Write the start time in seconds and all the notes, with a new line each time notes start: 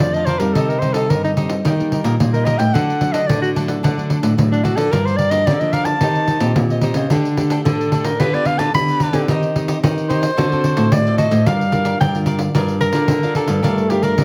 0.00 F2 F3 A3 D4 D5, pandeiro
0.14 D#5 F5 A5, pandeiro
0.18 D5
0.25 A#4 C5 D5 F5, pandeiro
0.29 A5
0.39 G3 C4 D#4 A#4 D5 F5 A5, pandeiro
0.53 C3 D#4 G4 A4 C5, pandeiro
0.57 D#5
0.68 A#4, pandeiro
0.79 G3 C4 D#4 G4 C5, pandeiro
0.84 D#4 D#5
0.93 D#4 G4 A4 C5 D#5, pandeiro
1.10 G2 D3 D#4 G4 A#4 C5 D#5, pandeiro
1.24 D#4, pandeiro
1.37 G3 C4 D#4 G4 C5 D#5, pandeiro
1.49 G4 C5 D#5, pandeiro
1.65 D#3 G3 A#3 D#4 G4 A#4 D#5 G5, pandeiro
1.80 G3 A#3 D#4, pandeiro
1.92 G4 A#4 D#5 G5, pandeiro
2.04 A#2 G4 A#4 D#5 G5, pandeiro
2.20 A#2 G3 A#3 D#4, pandeiro
2.33 A#4 D#5 G5, pandeiro
2.45 G4 A#4 D#5 G5, pandeiro
2.58 A2 A#4 D#5 G5, pandeiro
2.73 D3 F#3 A3 D4 A4 D5 F#5, pandeiro
2.90 pandeiro
3.01 F#3 A3 D4 A4 D5 F#5, pandeiro
3.13 D4 A4 D5 D#5 F#5, pandeiro
3.27 A2 D3 D4 A4 D5 F#5, pandeiro
3.42 F#4, pandeiro
3.55 F#3 A3 D4 A4 D5 F#5, pandeiro
3.68 A4 D5 F#5, pandeiro
3.83 D3 D4 A4 D5 F#5, pandeiro
3.97 F#3 A3 D4, pandeiro
4.10 D4 A4 D5 F#5, pandeiro
4.23 A2 D4 A4 D5 F#5, pandeiro
4.37 A2 F#3 A3 D4, pandeiro
4.52 D4 A4 D5 F#5, pandeiro
4.64 F#3 A3 D4 F#4 A4 D5 F#5, pandeiro
4.76 D3 F3 A#3 D4 A4 D5 F#5, pandeiro
4.91 G2 G4 A#4 D5 F5, pandeiro
5.06 C5, pandeiro
5.17 G4 A#4 D5 F5, pandeiro
5.31 F3 A#3 D4 G4 A#4 D5 D#5 F5, pandeiro
5.46 D3 G4 A#4 D5 F5, pandeiro
5.60 F3 A#3 D4 D#5, pandeiro
5.73 G4 A#4 D5 F5, pandeiro
5.85 A#4 D5 F5 A5, pandeiro
6.01 D#3 A#3 C4 D#4 G4 C5 D#5, pandeiro
6.15 pandeiro
6.28 D#4 G4 C5 D#5, pandeiro
6.40 A#2 A#3 C4 D#4 G4 C5 D#5, pandeiro
6.56 A#2, pandeiro
6.70 G4 C5 D#5, pandeiro
6.81 A#3 C4 D#4 G4 C5 D#5, pandeiro
6.94 C#3 G4 C5 D#5, pandeiro
7.10 D3 A3 D4 G4 A4 D5 G5, pandeiro
7.25 pandeiro
7.37 A3 D4 G4 A4 D5 G5, pandeiro
7.50 D4 A4 D5 G5, pandeiro
7.64 A2 D3 D4 A4 D5, pandeiro
7.69 G5
7.81 pandeiro
7.91 A3 D4 G4 A4 D5 G5, pandeiro
8.04 A4 A#4 D5 G5, pandeiro
8.19 D3 B3 F4 G4 B4 D5, pandeiro
8.34 B3 F4 G4 D5, pandeiro
8.45 F4 G4 B4 D5 F5, pandeiro
8.59 D3 F4 G4 B4 D5 A5, pandeiro
8.74 D3 B3 F4 G4 B5, pandeiro
8.88 G4 B4 D5, pandeiro
9.00 F4 G4 B4 D5, pandeiro
9.13 D3 C4 D#4 G4 B4 D5, pandeiro
9.28 D#3 D#4 G4 C5 D#5, pandeiro
9.43 pandeiro
9.55 C4 D#4 G4 C5 D#5, pandeiro
9.68 D#4 G4 C5 D#5, pandeiro
9.83 D#3 D#4 G4 C5 D#5, pandeiro
9.98 pandeiro
10.09 C4 D#4 G4 C5 D#5, pandeiro
10.22 G4 C5 D#5, pandeiro
10.37 D3 C4 F#4 A4 C5 D5, pandeiro
10.52 C4 F#4 A4, pandeiro
10.64 F#4 A4 C5 D5, pandeiro
10.77 A2 F#4 A4 C5 D5, pandeiro
10.92 A2 C4 F#4 A4 D5, pandeiro
11.07 A4 C5 D5, pandeiro
11.18 F#4 A4 C5 D5 D#5, pandeiro
11.31 A2 A4 C5 D5, pandeiro
11.46 G2 G3 D4 F4 G4 A#4 D5 F5, pandeiro
11.61 pandeiro
11.72 D4 F4 G4 A#4 D5 F5, pandeiro
11.85 G4 A#4 D5 F5, pandeiro
12.00 G2 D3 G4 A#4 D5 F5 G5, pandeiro
12.15 D4 F4 A#4, pandeiro
12.26 G4 A#4 D5 F5, pandeiro
12.39 A#4 D5 F5, pandeiro
12.54 G2 G3 D4 F4 G4 A#4 D5 F5, pandeiro
12.68 pandeiro
12.81 G4 A#4 D5 F5, pandeiro
12.93 D3 D4 F4 G4 A#4 D5 F5, pandeiro
13.08 D3, pandeiro
13.23 D4 F4 A#4 D5 F5, pandeiro
13.35 G4 A4 A#4 D5 F5, pandeiro
13.48 G2 A#4 D5 F5, pandeiro
13.63 G2 G3 A3 D4 F4 G4 A4 A#4 D5 F5, pandeiro
13.78 pandeiro
13.90 D4 F4 G4 A#4 D5 F5, pandeiro
14.03 G4 A#4 D5 F5, pandeiro
14.18 D3 G3 G4 A#4 D5 F5, pandeiro